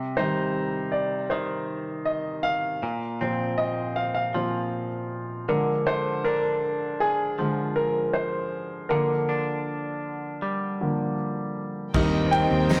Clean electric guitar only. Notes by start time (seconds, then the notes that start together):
Already playing: C3 G3
0.17 D#4
1.31 D#3
2.83 A#2
3.21 C4
4.34 F3
5.49 D3
5.87 D3
6.25 D4
7.39 F3
8.91 D3
9.29 D4
10.42 G3
11.94 D#3
12.70 D#4